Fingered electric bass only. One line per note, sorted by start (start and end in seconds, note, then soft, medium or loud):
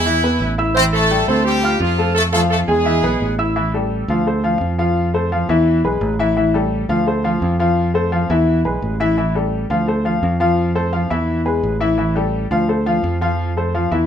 0.00 0.37 E2 loud
0.40 1.22 A1 loud
1.28 1.77 D2 loud
1.80 2.62 F2 medium
2.68 3.01 E2 loud
3.03 3.19 B1 medium
3.21 4.03 A1 medium
4.08 4.57 D2 loud
4.61 5.43 F2 medium
5.49 5.82 E2 loud
5.84 6.00 B1 medium
6.01 6.83 A1 loud
6.89 7.38 D2 loud
7.42 8.24 F2 loud
8.30 8.62 E2 loud
8.65 8.81 B1 medium
8.82 9.65 A1 loud
9.70 10.19 D2 loud
10.23 11.05 F2 loud
11.11 11.60 E2 loud
11.63 12.45 A1 loud
12.51 13.00 D2 loud
13.04 13.86 F2 loud
13.92 14.06 E2 loud